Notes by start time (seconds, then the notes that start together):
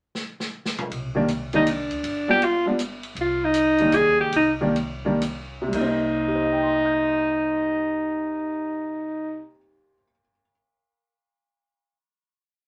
0.15 snare
0.40 snare
0.66 snare
0.78 mid tom
0.90 C2, ride
1.15 D#3 G3 A#3 D4
1.28 hi-hat pedal, ride
1.53 D#3 G3 A#3 D4 D#4, ride
1.67 D4, hi-hat pedal, ride
1.90 D2, ride
2.03 G1, ride
2.28 F3 G3 B3 D4 G4
2.42 F4, ride
2.66 F3 G3 B3 D4
2.79 hi-hat pedal, ride
3.03 ride
3.15 C2, ride
3.21 F4
3.44 D#4
3.54 hi-hat pedal, ride
3.78 D#3 G3 A#3 D4, ride
3.92 G#4, hi-hat pedal, ride
4.06 D2
4.19 C#2 G4
4.33 C2 D#4, ride
4.61 D#3 G3 A#3 D4
4.76 ride
5.05 D#3 G3 A#3 D4
5.22 hi-hat pedal, ride
5.62 C3
5.68 G3
5.72 C2 A#3 D#4, kick, crash
5.81 C4
5.87 D#4
6.28 G4
6.35 C5
6.44 D#5
6.53 G5
6.63 C6
6.74 D#6
6.85 G6